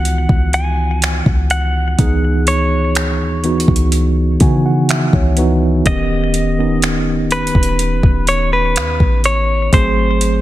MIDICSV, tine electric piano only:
0, 0, Header, 1, 2, 480
1, 0, Start_track
1, 0, Key_signature, 4, "minor"
1, 0, Tempo, 967742
1, 985, Time_signature, 4, 2, 24, 8
1, 5165, End_track
2, 0, Start_track
2, 0, Title_t, "Tine electric piano"
2, 0, Program_c, 0, 4
2, 0, Control_c, 0, 64, 127
2, 0, Note_on_c, 0, 51, 60
2, 0, Note_on_c, 0, 52, 65
2, 0, Note_on_c, 0, 59, 65
2, 0, Note_on_c, 0, 63, 78
2, 0, Note_on_c, 0, 65, 60
2, 0, Note_on_c, 0, 66, 75
2, 100, Note_off_c, 0, 52, 0
2, 102, Note_off_c, 0, 59, 0
2, 104, Note_off_c, 0, 51, 0
2, 122, Note_off_c, 0, 66, 0
2, 984, Note_on_c, 0, 52, 86
2, 987, Note_on_c, 0, 59, 82
2, 990, Note_off_c, 0, 63, 0
2, 990, Note_on_c, 0, 63, 82
2, 994, Note_on_c, 0, 68, 100
2, 1492, Note_off_c, 0, 52, 0
2, 1494, Note_off_c, 0, 59, 0
2, 1495, Note_off_c, 0, 63, 0
2, 1497, Note_off_c, 0, 68, 0
2, 1704, Note_on_c, 0, 52, 74
2, 1707, Note_on_c, 0, 59, 71
2, 1711, Note_on_c, 0, 63, 69
2, 1715, Note_on_c, 0, 66, 85
2, 2043, Note_off_c, 0, 52, 0
2, 2045, Note_off_c, 0, 59, 0
2, 2046, Note_off_c, 0, 63, 0
2, 2048, Note_off_c, 0, 66, 0
2, 2184, Note_on_c, 0, 51, 60
2, 2188, Note_on_c, 0, 59, 71
2, 2190, Note_on_c, 0, 63, 68
2, 2190, Note_on_c, 0, 80, 70
2, 2194, Note_on_c, 0, 66, 88
2, 2217, Note_off_c, 0, 51, 0
2, 2217, Note_on_c, 0, 52, 78
2, 2299, Note_off_c, 0, 80, 0
2, 2309, Note_on_c, 0, 78, 66
2, 2419, Note_off_c, 0, 78, 0
2, 2429, Note_on_c, 0, 76, 69
2, 2525, Note_off_c, 0, 59, 0
2, 2526, Note_off_c, 0, 63, 0
2, 2528, Note_off_c, 0, 66, 0
2, 2539, Note_off_c, 0, 52, 0
2, 2539, Note_off_c, 0, 76, 0
2, 2550, Note_on_c, 0, 73, 69
2, 2664, Note_on_c, 0, 52, 84
2, 2667, Note_on_c, 0, 59, 83
2, 2671, Note_on_c, 0, 63, 78
2, 2674, Note_on_c, 0, 66, 89
2, 2834, Note_off_c, 0, 52, 0
2, 2835, Note_off_c, 0, 59, 0
2, 2837, Note_off_c, 0, 63, 0
2, 2839, Note_off_c, 0, 66, 0
2, 2888, Note_off_c, 0, 73, 0
2, 2904, Note_on_c, 0, 51, 92
2, 2908, Note_on_c, 0, 59, 84
2, 2911, Control_c, 0, 64, 0
2, 2911, Note_on_c, 0, 61, 81
2, 2913, Note_off_c, 0, 65, 0
2, 2914, Note_on_c, 0, 67, 100
2, 3003, Control_c, 0, 64, 127
2, 3158, Note_off_c, 0, 51, 0
2, 3160, Note_off_c, 0, 59, 0
2, 3162, Note_off_c, 0, 61, 0
2, 3163, Note_off_c, 0, 67, 0
2, 3264, Note_on_c, 0, 51, 69
2, 3267, Note_on_c, 0, 59, 66
2, 3271, Note_on_c, 0, 61, 67
2, 3274, Note_on_c, 0, 63, 75
2, 3941, Note_off_c, 0, 51, 0
2, 3943, Note_off_c, 0, 59, 0
2, 3945, Note_off_c, 0, 61, 0
2, 3946, Note_off_c, 0, 63, 0
2, 4823, Note_on_c, 0, 54, 88
2, 4826, Note_on_c, 0, 57, 84
2, 4829, Note_on_c, 0, 60, 79
2, 4831, Control_c, 0, 64, 0
2, 4833, Note_on_c, 0, 68, 98
2, 4914, Control_c, 0, 64, 127
2, 5165, Note_off_c, 0, 54, 0
2, 5165, Note_off_c, 0, 57, 0
2, 5165, Note_off_c, 0, 60, 0
2, 5165, Note_off_c, 0, 68, 0
2, 5165, End_track
0, 0, End_of_file